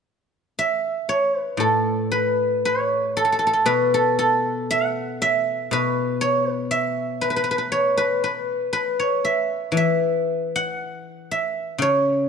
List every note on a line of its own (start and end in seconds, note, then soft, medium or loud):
0.59 2.31 E5 medium
1.09 1.40 C#5 medium
1.40 2.12 B4 medium
1.57 3.66 A2 soft
1.57 3.16 A4 medium
2.12 3.66 B4 medium
2.65 4.56 C#5 medium
3.17 3.24 A4 medium
3.25 3.32 A4 soft
3.32 3.38 A4 soft
3.39 3.46 A4 soft
3.47 3.53 A4 soft
3.53 3.94 A4 soft
3.66 5.70 B2 soft
3.66 5.71 B4 medium
3.94 4.18 A4 medium
4.19 6.38 A4 medium
4.71 6.31 F#5 medium
5.22 6.70 E5 medium
5.71 8.69 B2 soft
5.71 6.50 B4 medium
6.21 6.50 C#5 medium
6.50 7.21 B4 medium
6.71 8.43 E5 medium
7.21 7.30 B4 medium
7.30 7.36 B4 soft
7.36 7.43 B4 soft
7.44 7.51 B4 soft
7.51 7.58 B4 soft
7.58 7.97 B4 soft
7.72 8.99 C#5 medium
7.97 8.23 B4 medium
8.24 8.72 B4 medium
8.73 10.77 B4 medium
8.99 10.90 C#5 medium
9.25 9.77 E5 medium
9.72 12.29 E3 soft
9.77 11.31 E5 medium
10.56 12.16 F#5 medium
11.31 12.29 E5 medium
11.78 12.29 C#3 soft
11.78 12.29 C#5 medium